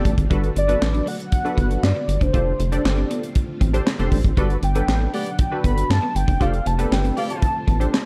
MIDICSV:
0, 0, Header, 1, 9, 480
1, 0, Start_track
1, 0, Key_signature, 1, "major"
1, 0, Tempo, 508475
1, 290, Time_signature, 4, 2, 24, 8
1, 7603, End_track
2, 0, Start_track
2, 0, Title_t, "Soft synth lead"
2, 0, Program_c, 0, 80
2, 549, Note_on_c, 0, 74, 97
2, 1020, Note_on_c, 0, 78, 112
2, 1034, Note_off_c, 0, 74, 0
2, 1249, Note_off_c, 0, 78, 0
2, 1255, Note_on_c, 0, 78, 115
2, 1734, Note_on_c, 0, 74, 92
2, 1748, Note_off_c, 0, 78, 0
2, 2097, Note_on_c, 0, 72, 88
2, 2112, Note_off_c, 0, 74, 0
2, 2813, Note_off_c, 0, 72, 0
2, 4378, Note_on_c, 0, 79, 95
2, 4853, Note_on_c, 0, 78, 93
2, 4868, Note_off_c, 0, 79, 0
2, 5098, Note_on_c, 0, 79, 105
2, 5112, Note_off_c, 0, 78, 0
2, 5334, Note_off_c, 0, 79, 0
2, 5343, Note_on_c, 0, 83, 98
2, 5560, Note_off_c, 0, 83, 0
2, 5576, Note_on_c, 0, 81, 104
2, 5796, Note_off_c, 0, 81, 0
2, 5815, Note_on_c, 0, 79, 95
2, 6059, Note_on_c, 0, 77, 104
2, 6073, Note_off_c, 0, 79, 0
2, 6294, Note_on_c, 0, 81, 99
2, 6308, Note_off_c, 0, 77, 0
2, 6542, Note_on_c, 0, 79, 92
2, 6556, Note_off_c, 0, 81, 0
2, 6771, Note_off_c, 0, 79, 0
2, 6776, Note_on_c, 0, 77, 83
2, 6829, Note_off_c, 0, 77, 0
2, 6897, Note_on_c, 0, 81, 98
2, 7576, Note_off_c, 0, 81, 0
2, 7603, End_track
3, 0, Start_track
3, 0, Title_t, "Analog polysynth"
3, 0, Program_c, 1, 90
3, 0, Note_on_c, 1, 62, 92
3, 0, Note_on_c, 1, 67, 85
3, 0, Note_on_c, 1, 69, 84
3, 0, Note_on_c, 1, 74, 89
3, 101, Note_off_c, 1, 62, 0
3, 103, Note_off_c, 1, 67, 0
3, 104, Note_off_c, 1, 69, 0
3, 106, Note_off_c, 1, 74, 0
3, 285, Note_on_c, 1, 62, 93
3, 288, Note_on_c, 1, 66, 79
3, 291, Note_on_c, 1, 69, 90
3, 293, Note_on_c, 1, 71, 97
3, 462, Note_off_c, 1, 62, 0
3, 464, Note_off_c, 1, 66, 0
3, 465, Note_off_c, 1, 69, 0
3, 467, Note_off_c, 1, 71, 0
3, 643, Note_on_c, 1, 62, 79
3, 648, Note_on_c, 1, 66, 70
3, 651, Note_on_c, 1, 69, 76
3, 652, Note_on_c, 1, 71, 91
3, 996, Note_off_c, 1, 62, 0
3, 999, Note_off_c, 1, 66, 0
3, 1000, Note_off_c, 1, 69, 0
3, 1001, Note_off_c, 1, 71, 0
3, 1366, Note_on_c, 1, 62, 75
3, 1368, Note_on_c, 1, 66, 66
3, 1371, Note_on_c, 1, 69, 62
3, 1373, Note_on_c, 1, 71, 76
3, 1777, Note_off_c, 1, 62, 0
3, 1777, Note_off_c, 1, 66, 0
3, 1779, Note_off_c, 1, 69, 0
3, 1780, Note_off_c, 1, 71, 0
3, 2204, Note_on_c, 1, 62, 68
3, 2208, Note_on_c, 1, 67, 63
3, 2210, Note_on_c, 1, 69, 63
3, 2213, Note_on_c, 1, 72, 80
3, 2382, Note_off_c, 1, 62, 0
3, 2384, Note_off_c, 1, 67, 0
3, 2385, Note_off_c, 1, 69, 0
3, 2386, Note_off_c, 1, 72, 0
3, 2567, Note_on_c, 1, 62, 76
3, 2571, Note_on_c, 1, 67, 69
3, 2572, Note_on_c, 1, 69, 69
3, 2577, Note_on_c, 1, 74, 82
3, 3035, Note_off_c, 1, 62, 0
3, 3037, Note_off_c, 1, 67, 0
3, 3038, Note_off_c, 1, 69, 0
3, 3040, Note_off_c, 1, 74, 0
3, 3525, Note_on_c, 1, 62, 83
3, 3528, Note_on_c, 1, 67, 82
3, 3529, Note_on_c, 1, 69, 77
3, 3532, Note_on_c, 1, 72, 100
3, 3644, Note_off_c, 1, 62, 0
3, 3645, Note_off_c, 1, 67, 0
3, 3646, Note_off_c, 1, 69, 0
3, 3647, Note_off_c, 1, 72, 0
3, 3768, Note_on_c, 1, 62, 90
3, 3771, Note_on_c, 1, 67, 80
3, 3773, Note_on_c, 1, 69, 78
3, 3774, Note_on_c, 1, 72, 98
3, 3944, Note_off_c, 1, 62, 0
3, 3945, Note_off_c, 1, 67, 0
3, 3947, Note_off_c, 1, 69, 0
3, 3947, Note_off_c, 1, 72, 0
3, 4125, Note_on_c, 1, 62, 97
3, 4129, Note_on_c, 1, 66, 88
3, 4130, Note_on_c, 1, 69, 88
3, 4134, Note_on_c, 1, 71, 101
3, 4302, Note_off_c, 1, 62, 0
3, 4304, Note_off_c, 1, 66, 0
3, 4305, Note_off_c, 1, 69, 0
3, 4307, Note_off_c, 1, 71, 0
3, 4486, Note_on_c, 1, 62, 75
3, 4489, Note_on_c, 1, 54, 70
3, 4489, Note_on_c, 1, 69, 76
3, 4493, Note_on_c, 1, 71, 86
3, 4838, Note_off_c, 1, 62, 0
3, 4839, Note_off_c, 1, 54, 0
3, 4840, Note_off_c, 1, 69, 0
3, 4842, Note_off_c, 1, 71, 0
3, 5205, Note_on_c, 1, 62, 69
3, 5207, Note_on_c, 1, 66, 71
3, 5210, Note_on_c, 1, 69, 66
3, 5212, Note_on_c, 1, 71, 85
3, 5616, Note_off_c, 1, 62, 0
3, 5617, Note_off_c, 1, 66, 0
3, 5618, Note_off_c, 1, 69, 0
3, 5619, Note_off_c, 1, 71, 0
3, 6044, Note_on_c, 1, 62, 73
3, 6048, Note_on_c, 1, 67, 63
3, 6050, Note_on_c, 1, 69, 69
3, 6053, Note_on_c, 1, 72, 77
3, 6222, Note_off_c, 1, 62, 0
3, 6224, Note_off_c, 1, 67, 0
3, 6225, Note_off_c, 1, 69, 0
3, 6226, Note_off_c, 1, 72, 0
3, 6406, Note_on_c, 1, 62, 77
3, 6407, Note_on_c, 1, 67, 67
3, 6410, Note_on_c, 1, 69, 69
3, 6413, Note_on_c, 1, 71, 80
3, 6875, Note_off_c, 1, 62, 0
3, 6875, Note_off_c, 1, 67, 0
3, 6877, Note_off_c, 1, 69, 0
3, 6878, Note_off_c, 1, 71, 0
3, 7361, Note_on_c, 1, 62, 77
3, 7364, Note_on_c, 1, 67, 72
3, 7365, Note_on_c, 1, 69, 66
3, 7368, Note_on_c, 1, 72, 86
3, 7482, Note_off_c, 1, 62, 0
3, 7483, Note_off_c, 1, 67, 0
3, 7484, Note_off_c, 1, 69, 0
3, 7485, Note_off_c, 1, 72, 0
3, 7603, End_track
4, 0, Start_track
4, 0, Title_t, "Horn section"
4, 0, Program_c, 2, 61
4, 4128, Note_on_c, 2, 59, 80
4, 4129, Note_on_c, 2, 67, 85
4, 4131, Note_on_c, 2, 74, 91
4, 4231, Note_off_c, 2, 59, 0
4, 4231, Note_off_c, 2, 67, 0
4, 4232, Note_off_c, 2, 74, 0
4, 4849, Note_on_c, 2, 67, 90
4, 4850, Note_on_c, 2, 74, 95
4, 4851, Note_on_c, 2, 59, 93
4, 5002, Note_off_c, 2, 67, 0
4, 5003, Note_off_c, 2, 59, 0
4, 5003, Note_off_c, 2, 74, 0
4, 6050, Note_on_c, 2, 57, 83
4, 6050, Note_on_c, 2, 67, 88
4, 6050, Note_on_c, 2, 74, 89
4, 6151, Note_off_c, 2, 67, 0
4, 6152, Note_off_c, 2, 57, 0
4, 6152, Note_off_c, 2, 74, 0
4, 6767, Note_on_c, 2, 67, 96
4, 6768, Note_on_c, 2, 57, 89
4, 6769, Note_on_c, 2, 74, 105
4, 7074, Note_off_c, 2, 57, 0
4, 7074, Note_off_c, 2, 67, 0
4, 7075, Note_off_c, 2, 74, 0
4, 7603, End_track
5, 0, Start_track
5, 0, Title_t, "Clean electric guitar"
5, 0, Program_c, 3, 27
5, 45, Note_on_c, 3, 57, 78
5, 137, Note_off_c, 3, 57, 0
5, 286, Note_on_c, 3, 55, 78
5, 377, Note_off_c, 3, 55, 0
5, 647, Note_on_c, 3, 59, 67
5, 738, Note_off_c, 3, 59, 0
5, 885, Note_on_c, 3, 62, 71
5, 977, Note_off_c, 3, 62, 0
5, 1001, Note_on_c, 3, 57, 80
5, 1094, Note_off_c, 3, 57, 0
5, 1481, Note_on_c, 3, 59, 81
5, 1574, Note_off_c, 3, 59, 0
5, 1845, Note_on_c, 3, 59, 70
5, 1937, Note_off_c, 3, 59, 0
5, 2085, Note_on_c, 3, 62, 80
5, 2177, Note_off_c, 3, 62, 0
5, 2205, Note_on_c, 3, 65, 93
5, 2297, Note_off_c, 3, 65, 0
5, 2571, Note_on_c, 3, 62, 62
5, 2660, Note_off_c, 3, 62, 0
5, 2810, Note_on_c, 3, 60, 74
5, 2900, Note_off_c, 3, 60, 0
5, 2928, Note_on_c, 3, 59, 78
5, 3019, Note_off_c, 3, 59, 0
5, 3406, Note_on_c, 3, 60, 79
5, 3497, Note_off_c, 3, 60, 0
5, 3765, Note_on_c, 3, 57, 78
5, 3857, Note_off_c, 3, 57, 0
5, 3886, Note_on_c, 3, 57, 85
5, 3978, Note_off_c, 3, 57, 0
5, 4125, Note_on_c, 3, 55, 86
5, 4217, Note_off_c, 3, 55, 0
5, 4484, Note_on_c, 3, 59, 73
5, 4576, Note_off_c, 3, 59, 0
5, 4725, Note_on_c, 3, 62, 78
5, 4817, Note_off_c, 3, 62, 0
5, 4848, Note_on_c, 3, 57, 77
5, 4938, Note_off_c, 3, 57, 0
5, 5325, Note_on_c, 3, 59, 71
5, 5417, Note_off_c, 3, 59, 0
5, 5687, Note_on_c, 3, 59, 69
5, 5778, Note_off_c, 3, 59, 0
5, 5925, Note_on_c, 3, 62, 80
5, 6017, Note_off_c, 3, 62, 0
5, 6048, Note_on_c, 3, 65, 92
5, 6139, Note_off_c, 3, 65, 0
5, 6407, Note_on_c, 3, 59, 68
5, 6498, Note_off_c, 3, 59, 0
5, 6647, Note_on_c, 3, 60, 77
5, 6738, Note_off_c, 3, 60, 0
5, 6767, Note_on_c, 3, 57, 80
5, 6858, Note_off_c, 3, 57, 0
5, 7244, Note_on_c, 3, 59, 80
5, 7336, Note_off_c, 3, 59, 0
5, 7603, End_track
6, 0, Start_track
6, 0, Title_t, "String machine"
6, 0, Program_c, 4, 50
6, 0, Note_on_c, 4, 50, 76
6, 0, Note_on_c, 4, 55, 69
6, 0, Note_on_c, 4, 57, 71
6, 0, Note_on_c, 4, 60, 71
6, 0, Note_on_c, 4, 65, 86
6, 250, Note_off_c, 4, 55, 0
6, 268, Note_off_c, 4, 57, 0
6, 268, Note_off_c, 4, 60, 0
6, 268, Note_off_c, 4, 65, 0
6, 290, Note_on_c, 4, 59, 73
6, 292, Note_on_c, 4, 54, 75
6, 293, Note_on_c, 4, 66, 90
6, 2190, Note_off_c, 4, 59, 0
6, 2191, Note_off_c, 4, 54, 0
6, 2192, Note_off_c, 4, 66, 0
6, 2208, Note_on_c, 4, 65, 81
6, 2209, Note_on_c, 4, 60, 71
6, 2210, Note_on_c, 4, 57, 77
6, 4109, Note_off_c, 4, 65, 0
6, 4110, Note_off_c, 4, 60, 0
6, 4111, Note_off_c, 4, 57, 0
6, 4131, Note_on_c, 4, 54, 75
6, 4133, Note_on_c, 4, 62, 91
6, 4134, Note_on_c, 4, 59, 71
6, 6031, Note_off_c, 4, 54, 0
6, 6032, Note_off_c, 4, 62, 0
6, 6033, Note_off_c, 4, 59, 0
6, 6046, Note_on_c, 4, 60, 76
6, 6047, Note_on_c, 4, 65, 90
6, 6048, Note_on_c, 4, 57, 76
6, 7603, Note_off_c, 4, 50, 0
6, 7603, Note_off_c, 4, 57, 0
6, 7603, Note_off_c, 4, 60, 0
6, 7603, Note_off_c, 4, 65, 0
6, 7603, End_track
7, 0, Start_track
7, 0, Title_t, "Analog synth bass"
7, 0, Program_c, 5, 38
7, 49, Note_on_c, 5, 33, 94
7, 142, Note_off_c, 5, 33, 0
7, 170, Note_on_c, 5, 32, 84
7, 262, Note_off_c, 5, 32, 0
7, 290, Note_on_c, 5, 31, 100
7, 475, Note_off_c, 5, 31, 0
7, 530, Note_on_c, 5, 31, 103
7, 715, Note_off_c, 5, 31, 0
7, 772, Note_on_c, 5, 33, 94
7, 956, Note_off_c, 5, 33, 0
7, 1488, Note_on_c, 5, 31, 90
7, 1674, Note_off_c, 5, 31, 0
7, 1729, Note_on_c, 5, 43, 101
7, 1821, Note_off_c, 5, 43, 0
7, 1964, Note_on_c, 5, 31, 95
7, 2059, Note_off_c, 5, 31, 0
7, 2086, Note_on_c, 5, 30, 85
7, 2180, Note_off_c, 5, 30, 0
7, 2211, Note_on_c, 5, 29, 106
7, 2395, Note_off_c, 5, 29, 0
7, 2448, Note_on_c, 5, 29, 111
7, 2634, Note_off_c, 5, 29, 0
7, 2688, Note_on_c, 5, 31, 93
7, 2873, Note_off_c, 5, 31, 0
7, 3408, Note_on_c, 5, 33, 95
7, 3594, Note_off_c, 5, 33, 0
7, 3768, Note_on_c, 5, 29, 81
7, 3861, Note_off_c, 5, 29, 0
7, 3889, Note_on_c, 5, 33, 94
7, 3982, Note_off_c, 5, 33, 0
7, 4006, Note_on_c, 5, 32, 95
7, 4100, Note_off_c, 5, 32, 0
7, 4128, Note_on_c, 5, 31, 99
7, 4313, Note_off_c, 5, 31, 0
7, 4365, Note_on_c, 5, 31, 101
7, 4552, Note_off_c, 5, 31, 0
7, 4604, Note_on_c, 5, 33, 93
7, 4791, Note_off_c, 5, 33, 0
7, 5326, Note_on_c, 5, 31, 90
7, 5512, Note_off_c, 5, 31, 0
7, 5568, Note_on_c, 5, 43, 103
7, 5661, Note_off_c, 5, 43, 0
7, 5808, Note_on_c, 5, 31, 95
7, 5901, Note_off_c, 5, 31, 0
7, 5928, Note_on_c, 5, 30, 90
7, 6021, Note_off_c, 5, 30, 0
7, 6051, Note_on_c, 5, 29, 105
7, 6235, Note_off_c, 5, 29, 0
7, 6289, Note_on_c, 5, 29, 108
7, 6474, Note_off_c, 5, 29, 0
7, 6529, Note_on_c, 5, 31, 93
7, 6714, Note_off_c, 5, 31, 0
7, 7247, Note_on_c, 5, 33, 94
7, 7433, Note_off_c, 5, 33, 0
7, 7603, End_track
8, 0, Start_track
8, 0, Title_t, "Muted clean electric guitar strokes"
8, 528, Note_on_c, 9, 29, 48
8, 622, Note_off_c, 9, 29, 0
8, 767, Note_on_c, 9, 29, 45
8, 861, Note_off_c, 9, 29, 0
8, 1965, Note_on_c, 9, 29, 48
8, 2059, Note_off_c, 9, 29, 0
8, 2449, Note_on_c, 9, 29, 45
8, 2544, Note_off_c, 9, 29, 0
8, 2691, Note_on_c, 9, 29, 44
8, 2785, Note_off_c, 9, 29, 0
8, 3647, Note_on_c, 9, 29, 44
8, 3742, Note_off_c, 9, 29, 0
8, 4367, Note_on_c, 9, 29, 45
8, 4462, Note_off_c, 9, 29, 0
8, 4606, Note_on_c, 9, 29, 44
8, 4701, Note_off_c, 9, 29, 0
8, 5807, Note_on_c, 9, 29, 51
8, 5901, Note_off_c, 9, 29, 0
8, 6287, Note_on_c, 9, 29, 47
8, 6382, Note_off_c, 9, 29, 0
8, 6528, Note_on_c, 9, 29, 42
8, 6622, Note_off_c, 9, 29, 0
8, 7490, Note_on_c, 9, 29, 46
8, 7584, Note_off_c, 9, 29, 0
8, 7603, End_track
9, 0, Start_track
9, 0, Title_t, "Drums"
9, 49, Note_on_c, 9, 36, 92
9, 49, Note_on_c, 9, 42, 88
9, 143, Note_off_c, 9, 36, 0
9, 143, Note_off_c, 9, 42, 0
9, 168, Note_on_c, 9, 36, 93
9, 173, Note_on_c, 9, 42, 45
9, 263, Note_off_c, 9, 36, 0
9, 267, Note_off_c, 9, 42, 0
9, 290, Note_on_c, 9, 36, 109
9, 291, Note_on_c, 9, 42, 72
9, 384, Note_off_c, 9, 36, 0
9, 385, Note_off_c, 9, 42, 0
9, 410, Note_on_c, 9, 42, 36
9, 504, Note_off_c, 9, 42, 0
9, 530, Note_on_c, 9, 42, 69
9, 624, Note_off_c, 9, 42, 0
9, 648, Note_on_c, 9, 42, 56
9, 743, Note_off_c, 9, 42, 0
9, 775, Note_on_c, 9, 38, 115
9, 783, Note_on_c, 9, 39, 89
9, 869, Note_off_c, 9, 38, 0
9, 877, Note_off_c, 9, 39, 0
9, 890, Note_on_c, 9, 42, 34
9, 984, Note_off_c, 9, 42, 0
9, 1011, Note_on_c, 9, 46, 66
9, 1105, Note_off_c, 9, 46, 0
9, 1131, Note_on_c, 9, 42, 44
9, 1225, Note_off_c, 9, 42, 0
9, 1245, Note_on_c, 9, 42, 85
9, 1250, Note_on_c, 9, 36, 101
9, 1339, Note_off_c, 9, 42, 0
9, 1345, Note_off_c, 9, 36, 0
9, 1373, Note_on_c, 9, 42, 36
9, 1467, Note_off_c, 9, 42, 0
9, 1488, Note_on_c, 9, 36, 87
9, 1489, Note_on_c, 9, 42, 70
9, 1583, Note_off_c, 9, 36, 0
9, 1583, Note_off_c, 9, 42, 0
9, 1610, Note_on_c, 9, 42, 47
9, 1704, Note_off_c, 9, 42, 0
9, 1733, Note_on_c, 9, 38, 113
9, 1741, Note_on_c, 9, 39, 105
9, 1828, Note_off_c, 9, 38, 0
9, 1836, Note_off_c, 9, 39, 0
9, 1969, Note_on_c, 9, 42, 82
9, 2064, Note_off_c, 9, 42, 0
9, 2088, Note_on_c, 9, 36, 85
9, 2092, Note_on_c, 9, 42, 45
9, 2182, Note_off_c, 9, 36, 0
9, 2186, Note_off_c, 9, 42, 0
9, 2208, Note_on_c, 9, 42, 70
9, 2209, Note_on_c, 9, 36, 107
9, 2303, Note_off_c, 9, 42, 0
9, 2304, Note_off_c, 9, 36, 0
9, 2449, Note_on_c, 9, 42, 74
9, 2544, Note_off_c, 9, 42, 0
9, 2569, Note_on_c, 9, 42, 59
9, 2664, Note_off_c, 9, 42, 0
9, 2695, Note_on_c, 9, 38, 104
9, 2703, Note_on_c, 9, 39, 89
9, 2790, Note_off_c, 9, 38, 0
9, 2798, Note_off_c, 9, 39, 0
9, 2931, Note_on_c, 9, 42, 70
9, 3026, Note_off_c, 9, 42, 0
9, 3051, Note_on_c, 9, 42, 44
9, 3145, Note_off_c, 9, 42, 0
9, 3163, Note_on_c, 9, 42, 82
9, 3170, Note_on_c, 9, 36, 99
9, 3257, Note_off_c, 9, 42, 0
9, 3264, Note_off_c, 9, 36, 0
9, 3408, Note_on_c, 9, 36, 81
9, 3410, Note_on_c, 9, 42, 71
9, 3503, Note_off_c, 9, 36, 0
9, 3504, Note_off_c, 9, 42, 0
9, 3529, Note_on_c, 9, 42, 51
9, 3623, Note_off_c, 9, 42, 0
9, 3652, Note_on_c, 9, 38, 113
9, 3660, Note_on_c, 9, 39, 91
9, 3746, Note_off_c, 9, 38, 0
9, 3754, Note_off_c, 9, 39, 0
9, 3768, Note_on_c, 9, 42, 39
9, 3862, Note_off_c, 9, 42, 0
9, 3886, Note_on_c, 9, 46, 89
9, 3887, Note_on_c, 9, 36, 90
9, 3980, Note_off_c, 9, 46, 0
9, 3982, Note_off_c, 9, 36, 0
9, 4007, Note_on_c, 9, 36, 83
9, 4010, Note_on_c, 9, 42, 45
9, 4102, Note_off_c, 9, 36, 0
9, 4104, Note_off_c, 9, 42, 0
9, 4126, Note_on_c, 9, 42, 71
9, 4128, Note_on_c, 9, 36, 101
9, 4220, Note_off_c, 9, 42, 0
9, 4222, Note_off_c, 9, 36, 0
9, 4247, Note_on_c, 9, 42, 34
9, 4342, Note_off_c, 9, 42, 0
9, 4366, Note_on_c, 9, 42, 77
9, 4460, Note_off_c, 9, 42, 0
9, 4486, Note_on_c, 9, 42, 58
9, 4581, Note_off_c, 9, 42, 0
9, 4612, Note_on_c, 9, 38, 114
9, 4620, Note_on_c, 9, 39, 89
9, 4707, Note_off_c, 9, 38, 0
9, 4715, Note_off_c, 9, 39, 0
9, 4846, Note_on_c, 9, 46, 71
9, 4941, Note_off_c, 9, 46, 0
9, 4966, Note_on_c, 9, 42, 46
9, 5061, Note_off_c, 9, 42, 0
9, 5083, Note_on_c, 9, 42, 86
9, 5088, Note_on_c, 9, 36, 104
9, 5177, Note_off_c, 9, 42, 0
9, 5183, Note_off_c, 9, 36, 0
9, 5327, Note_on_c, 9, 36, 89
9, 5327, Note_on_c, 9, 42, 69
9, 5421, Note_off_c, 9, 36, 0
9, 5421, Note_off_c, 9, 42, 0
9, 5450, Note_on_c, 9, 42, 55
9, 5545, Note_off_c, 9, 42, 0
9, 5577, Note_on_c, 9, 38, 115
9, 5585, Note_on_c, 9, 39, 95
9, 5671, Note_off_c, 9, 38, 0
9, 5679, Note_off_c, 9, 39, 0
9, 5812, Note_on_c, 9, 42, 83
9, 5906, Note_off_c, 9, 42, 0
9, 5928, Note_on_c, 9, 36, 89
9, 5934, Note_on_c, 9, 42, 46
9, 6022, Note_off_c, 9, 36, 0
9, 6028, Note_off_c, 9, 42, 0
9, 6049, Note_on_c, 9, 36, 102
9, 6051, Note_on_c, 9, 42, 71
9, 6144, Note_off_c, 9, 36, 0
9, 6146, Note_off_c, 9, 42, 0
9, 6168, Note_on_c, 9, 42, 36
9, 6262, Note_off_c, 9, 42, 0
9, 6288, Note_on_c, 9, 42, 73
9, 6383, Note_off_c, 9, 42, 0
9, 6407, Note_on_c, 9, 42, 54
9, 6502, Note_off_c, 9, 42, 0
9, 6536, Note_on_c, 9, 38, 112
9, 6545, Note_on_c, 9, 39, 89
9, 6631, Note_off_c, 9, 38, 0
9, 6639, Note_off_c, 9, 39, 0
9, 6650, Note_on_c, 9, 42, 33
9, 6744, Note_off_c, 9, 42, 0
9, 6768, Note_on_c, 9, 46, 75
9, 6862, Note_off_c, 9, 46, 0
9, 6890, Note_on_c, 9, 42, 47
9, 6984, Note_off_c, 9, 42, 0
9, 7005, Note_on_c, 9, 42, 83
9, 7009, Note_on_c, 9, 36, 105
9, 7099, Note_off_c, 9, 42, 0
9, 7104, Note_off_c, 9, 36, 0
9, 7247, Note_on_c, 9, 36, 88
9, 7249, Note_on_c, 9, 42, 71
9, 7341, Note_off_c, 9, 36, 0
9, 7344, Note_off_c, 9, 42, 0
9, 7370, Note_on_c, 9, 42, 50
9, 7464, Note_off_c, 9, 42, 0
9, 7496, Note_on_c, 9, 38, 117
9, 7504, Note_on_c, 9, 39, 92
9, 7590, Note_off_c, 9, 38, 0
9, 7599, Note_off_c, 9, 39, 0
9, 7603, End_track
0, 0, End_of_file